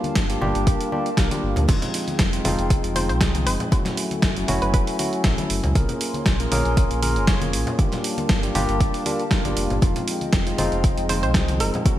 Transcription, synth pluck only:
2.96 C5
3.09 C5
3.47 C5
4.62 B4
4.74 B4
11.09 C5
11.23 C5
11.60 A#4

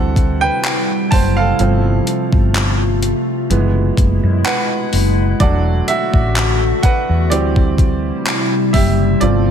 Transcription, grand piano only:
Already playing: E3 G3 C4 A4 F#5
0.41 B4 G5
1.11 C5 A5
1.37 A4 F5
1.60 F3 A3 C4
3.50 E3 G#3 B3
4.45 B4 F#5
5.40 F#3 A3 D4 F#4 D5
5.88 F#4 E5
6.83 B4 F#5
7.30 E3 G3 C4 G4 D5
8.73 G4 E5
9.21 F3 A3 C4 F4 D5

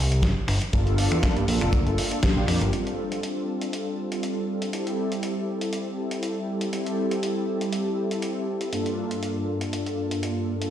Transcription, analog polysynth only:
0.72 A#3 D4 F4 A4
1.47 A#3 D4 F4 A4
2.23 A#3 D4 F4 G4
2.72 G3 C4 D4 F4 A4
4.72 G3 C4 E4 G4 A4
6.72 G3 C4 E4 G4 A4
8.72 G2 A#3 D4 F4 A4

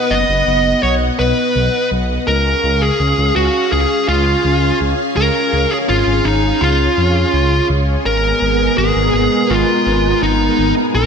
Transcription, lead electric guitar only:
Already playing: B4
0.11 D#5
0.83 C#5
1.19 B4
2.27 A#4
2.82 G#4
3.36 F#4
3.72 G#4
4.09 F4
5.17 A#4
5.71 G#4
5.89 F4
6.25 D#4
6.61 F4
8.06 A#4
8.78 G#4
9.50 F4
10.23 D#4
10.95 A#4

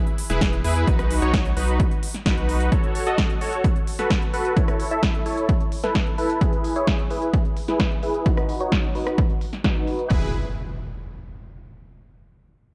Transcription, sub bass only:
0.30 E1
0.64 E2
0.87 B1
1.22 B1
1.57 B1
2.26 B1
2.37 B1
10.11 E1

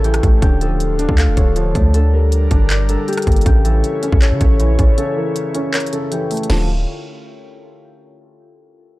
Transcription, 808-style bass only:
Already playing: A1
0.23 A1
0.42 D1
1.09 D2
1.28 F1
1.37 D1
1.75 D2
2.51 G1
3.27 G1
3.46 A1
4.12 A1
4.31 C#3
4.41 A1
4.60 A#1
4.79 A1
6.50 D1

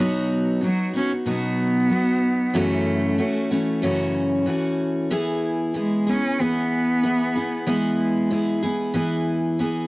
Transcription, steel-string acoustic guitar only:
Already playing: B2
0.00 F#3 B3 D#4 F#4
0.61 F#3 B3 D#4 F#4
0.93 B3 D#4 F#4
1.26 B2 F#3 B3 D#4 F#4
1.90 F#3 B3 D#4 F#4
2.54 F#2 C#3 E3 A3 C#4 F#4
3.18 E3 A3 C#4 F#4
3.51 E3 A3 C#4 F#4
3.82 F#2 C#3 E3 A3 C#4 F#4
4.46 E3 A3 C#4 F#4
5.10 E3 B3 E4 G#4
5.74 E3 B3 E4 G#4
6.07 B3 E4 G#4
6.40 E3 B3 E4 G#4
7.03 E3 B3 E4 G#4
7.35 B3 E4 G#4
7.67 E3 B3 E4 G#4
8.30 E3 B3 E4 G#4
8.62 B3 E4 G#4
8.94 E3 B3 E4 G#4
9.59 E3 B3 E4 G#4

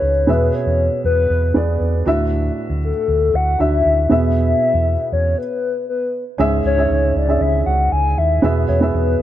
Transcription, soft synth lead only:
Already playing: C#5
0.29 B4
0.55 C#5
1.05 B4
2.85 A4
3.35 F#5
3.61 E5
4.11 E5
5.13 C#5
5.38 B4
5.89 B4
6.66 C#5
7.17 D5
7.42 E5
7.66 F#5
7.92 G#5
8.18 E5
8.69 C#5
8.95 B4

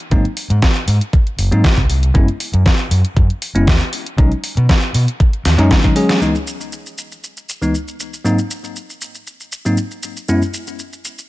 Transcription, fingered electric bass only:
0.12 G#1
0.50 G#2
0.88 G#2
1.38 F#1
1.52 G#2
1.77 C2
1.89 C2
2.15 F#1
2.54 F#2
2.91 F#2
3.16 F#2
3.55 F#1
3.67 D#2
4.18 B1
4.57 B2
4.94 B2
5.45 D#2
5.59 F#2

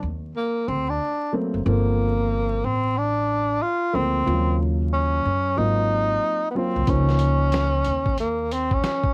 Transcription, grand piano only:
1.32 F#3 A3 A#3 C4
1.65 F3 A#3 C4 A4
3.93 F3 A3 A#3 C4
4.26 C#3 F3 A#3 F4
4.32 F#3
5.56 F#3 A#3 C4 F4
6.55 F#3 A#3 C4 F4
6.87 F3 A#3 D#4 C5

